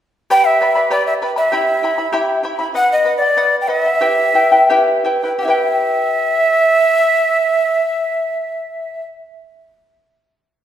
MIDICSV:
0, 0, Header, 1, 3, 480
1, 0, Start_track
1, 0, Key_signature, 1, "minor"
1, 0, Tempo, 614125
1, 235, Time_signature, 2, 2, 24, 8
1, 2635, Tempo, 659341
1, 3595, Tempo, 732601
1, 4075, Tempo, 768246
1, 7336, End_track
2, 0, Start_track
2, 0, Title_t, "Quena"
2, 0, Program_c, 0, 77
2, 244, Note_on_c, 0, 79, 107
2, 360, Note_on_c, 0, 76, 92
2, 372, Note_off_c, 0, 79, 0
2, 711, Note_off_c, 0, 76, 0
2, 716, Note_on_c, 0, 74, 66
2, 827, Note_off_c, 0, 74, 0
2, 835, Note_on_c, 0, 76, 77
2, 889, Note_off_c, 0, 76, 0
2, 1075, Note_on_c, 0, 76, 73
2, 1882, Note_off_c, 0, 76, 0
2, 2161, Note_on_c, 0, 78, 94
2, 2268, Note_off_c, 0, 78, 0
2, 2285, Note_on_c, 0, 75, 80
2, 2466, Note_off_c, 0, 75, 0
2, 2480, Note_on_c, 0, 74, 76
2, 2771, Note_off_c, 0, 74, 0
2, 2811, Note_on_c, 0, 79, 62
2, 2859, Note_on_c, 0, 76, 87
2, 2869, Note_off_c, 0, 79, 0
2, 3827, Note_off_c, 0, 76, 0
2, 4065, Note_on_c, 0, 78, 84
2, 4091, Note_on_c, 0, 76, 91
2, 4097, Note_off_c, 0, 78, 0
2, 6328, Note_off_c, 0, 76, 0
2, 7336, End_track
3, 0, Start_track
3, 0, Title_t, "Charango"
3, 0, Program_c, 1, 24
3, 236, Note_on_c, 1, 67, 64
3, 237, Note_on_c, 1, 79, 70
3, 238, Note_on_c, 1, 71, 70
3, 239, Note_on_c, 1, 74, 68
3, 243, Note_on_c, 1, 83, 75
3, 462, Note_off_c, 1, 79, 0
3, 465, Note_off_c, 1, 71, 0
3, 472, Note_off_c, 1, 74, 0
3, 472, Note_on_c, 1, 79, 53
3, 474, Note_on_c, 1, 71, 56
3, 475, Note_off_c, 1, 67, 0
3, 476, Note_off_c, 1, 83, 0
3, 481, Note_on_c, 1, 74, 54
3, 485, Note_on_c, 1, 83, 60
3, 579, Note_off_c, 1, 83, 0
3, 586, Note_off_c, 1, 74, 0
3, 589, Note_on_c, 1, 83, 48
3, 591, Note_off_c, 1, 71, 0
3, 593, Note_off_c, 1, 79, 0
3, 596, Note_on_c, 1, 74, 40
3, 601, Note_on_c, 1, 71, 41
3, 703, Note_off_c, 1, 71, 0
3, 704, Note_off_c, 1, 74, 0
3, 706, Note_off_c, 1, 83, 0
3, 706, Note_on_c, 1, 67, 61
3, 708, Note_on_c, 1, 79, 68
3, 712, Note_on_c, 1, 71, 71
3, 713, Note_on_c, 1, 74, 73
3, 715, Note_on_c, 1, 83, 76
3, 942, Note_off_c, 1, 79, 0
3, 946, Note_off_c, 1, 71, 0
3, 947, Note_off_c, 1, 74, 0
3, 949, Note_off_c, 1, 83, 0
3, 950, Note_off_c, 1, 67, 0
3, 952, Note_on_c, 1, 79, 52
3, 955, Note_on_c, 1, 71, 50
3, 956, Note_on_c, 1, 74, 59
3, 958, Note_on_c, 1, 83, 60
3, 1055, Note_off_c, 1, 83, 0
3, 1064, Note_off_c, 1, 74, 0
3, 1065, Note_on_c, 1, 83, 45
3, 1066, Note_off_c, 1, 71, 0
3, 1073, Note_off_c, 1, 79, 0
3, 1073, Note_on_c, 1, 74, 41
3, 1075, Note_on_c, 1, 71, 39
3, 1186, Note_on_c, 1, 67, 71
3, 1189, Note_off_c, 1, 74, 0
3, 1189, Note_off_c, 1, 83, 0
3, 1192, Note_off_c, 1, 71, 0
3, 1192, Note_on_c, 1, 76, 76
3, 1192, Note_on_c, 1, 79, 68
3, 1195, Note_on_c, 1, 64, 71
3, 1199, Note_on_c, 1, 83, 74
3, 1422, Note_off_c, 1, 79, 0
3, 1426, Note_off_c, 1, 64, 0
3, 1429, Note_off_c, 1, 76, 0
3, 1430, Note_off_c, 1, 67, 0
3, 1431, Note_on_c, 1, 79, 56
3, 1432, Note_off_c, 1, 83, 0
3, 1435, Note_on_c, 1, 64, 57
3, 1438, Note_on_c, 1, 76, 59
3, 1442, Note_on_c, 1, 83, 61
3, 1538, Note_off_c, 1, 83, 0
3, 1544, Note_off_c, 1, 76, 0
3, 1547, Note_on_c, 1, 83, 44
3, 1550, Note_off_c, 1, 64, 0
3, 1552, Note_off_c, 1, 79, 0
3, 1554, Note_on_c, 1, 76, 43
3, 1560, Note_on_c, 1, 64, 36
3, 1653, Note_off_c, 1, 76, 0
3, 1657, Note_off_c, 1, 64, 0
3, 1661, Note_off_c, 1, 83, 0
3, 1661, Note_on_c, 1, 67, 73
3, 1661, Note_on_c, 1, 79, 73
3, 1663, Note_on_c, 1, 76, 83
3, 1667, Note_on_c, 1, 64, 84
3, 1670, Note_on_c, 1, 83, 84
3, 1893, Note_off_c, 1, 79, 0
3, 1900, Note_off_c, 1, 64, 0
3, 1903, Note_off_c, 1, 76, 0
3, 1903, Note_on_c, 1, 79, 56
3, 1905, Note_off_c, 1, 83, 0
3, 1906, Note_off_c, 1, 67, 0
3, 1909, Note_on_c, 1, 64, 63
3, 1912, Note_on_c, 1, 76, 67
3, 1914, Note_on_c, 1, 83, 58
3, 2013, Note_off_c, 1, 83, 0
3, 2018, Note_off_c, 1, 76, 0
3, 2022, Note_on_c, 1, 83, 45
3, 2027, Note_off_c, 1, 64, 0
3, 2027, Note_off_c, 1, 79, 0
3, 2028, Note_on_c, 1, 76, 42
3, 2036, Note_on_c, 1, 64, 39
3, 2138, Note_off_c, 1, 64, 0
3, 2141, Note_on_c, 1, 71, 62
3, 2144, Note_off_c, 1, 76, 0
3, 2147, Note_off_c, 1, 83, 0
3, 2148, Note_on_c, 1, 75, 69
3, 2150, Note_on_c, 1, 78, 74
3, 2373, Note_off_c, 1, 71, 0
3, 2380, Note_off_c, 1, 75, 0
3, 2383, Note_on_c, 1, 71, 55
3, 2388, Note_off_c, 1, 78, 0
3, 2389, Note_on_c, 1, 75, 58
3, 2397, Note_on_c, 1, 78, 59
3, 2504, Note_off_c, 1, 78, 0
3, 2509, Note_off_c, 1, 71, 0
3, 2512, Note_off_c, 1, 75, 0
3, 2513, Note_on_c, 1, 78, 47
3, 2524, Note_on_c, 1, 75, 36
3, 2626, Note_off_c, 1, 75, 0
3, 2629, Note_off_c, 1, 78, 0
3, 2632, Note_on_c, 1, 71, 59
3, 2636, Note_on_c, 1, 75, 70
3, 2638, Note_on_c, 1, 78, 80
3, 2851, Note_off_c, 1, 71, 0
3, 2856, Note_off_c, 1, 75, 0
3, 2860, Note_on_c, 1, 71, 54
3, 2862, Note_off_c, 1, 78, 0
3, 2865, Note_on_c, 1, 75, 52
3, 2871, Note_on_c, 1, 78, 58
3, 2970, Note_off_c, 1, 78, 0
3, 2979, Note_on_c, 1, 78, 47
3, 2981, Note_off_c, 1, 71, 0
3, 2981, Note_off_c, 1, 75, 0
3, 2990, Note_on_c, 1, 75, 38
3, 3098, Note_off_c, 1, 78, 0
3, 3098, Note_on_c, 1, 67, 69
3, 3099, Note_on_c, 1, 64, 67
3, 3101, Note_off_c, 1, 75, 0
3, 3101, Note_on_c, 1, 76, 67
3, 3104, Note_on_c, 1, 71, 68
3, 3104, Note_on_c, 1, 79, 78
3, 3331, Note_off_c, 1, 76, 0
3, 3336, Note_off_c, 1, 64, 0
3, 3338, Note_off_c, 1, 71, 0
3, 3340, Note_off_c, 1, 79, 0
3, 3340, Note_on_c, 1, 76, 54
3, 3343, Note_off_c, 1, 67, 0
3, 3344, Note_on_c, 1, 64, 56
3, 3346, Note_on_c, 1, 71, 59
3, 3349, Note_on_c, 1, 79, 57
3, 3460, Note_off_c, 1, 79, 0
3, 3464, Note_off_c, 1, 71, 0
3, 3467, Note_off_c, 1, 76, 0
3, 3469, Note_off_c, 1, 64, 0
3, 3469, Note_on_c, 1, 79, 57
3, 3473, Note_on_c, 1, 71, 48
3, 3478, Note_on_c, 1, 64, 42
3, 3596, Note_off_c, 1, 79, 0
3, 3598, Note_off_c, 1, 64, 0
3, 3598, Note_off_c, 1, 71, 0
3, 3599, Note_on_c, 1, 67, 76
3, 3602, Note_on_c, 1, 76, 76
3, 3604, Note_on_c, 1, 71, 89
3, 3606, Note_on_c, 1, 64, 78
3, 3607, Note_on_c, 1, 79, 75
3, 3819, Note_off_c, 1, 76, 0
3, 3821, Note_off_c, 1, 64, 0
3, 3826, Note_off_c, 1, 79, 0
3, 3827, Note_off_c, 1, 71, 0
3, 3827, Note_on_c, 1, 76, 60
3, 3829, Note_on_c, 1, 64, 60
3, 3832, Note_off_c, 1, 67, 0
3, 3834, Note_on_c, 1, 79, 64
3, 3835, Note_on_c, 1, 71, 61
3, 3942, Note_off_c, 1, 79, 0
3, 3946, Note_off_c, 1, 71, 0
3, 3950, Note_on_c, 1, 79, 50
3, 3951, Note_off_c, 1, 64, 0
3, 3951, Note_off_c, 1, 76, 0
3, 3954, Note_on_c, 1, 71, 45
3, 3960, Note_on_c, 1, 64, 39
3, 4051, Note_on_c, 1, 67, 76
3, 4076, Note_off_c, 1, 79, 0
3, 4077, Note_off_c, 1, 71, 0
3, 4078, Note_on_c, 1, 76, 61
3, 4080, Note_off_c, 1, 64, 0
3, 4092, Note_on_c, 1, 64, 72
3, 4109, Note_on_c, 1, 71, 79
3, 4122, Note_on_c, 1, 79, 72
3, 6340, Note_off_c, 1, 67, 0
3, 6365, Note_off_c, 1, 76, 0
3, 6380, Note_off_c, 1, 64, 0
3, 6396, Note_off_c, 1, 71, 0
3, 6409, Note_off_c, 1, 79, 0
3, 7336, End_track
0, 0, End_of_file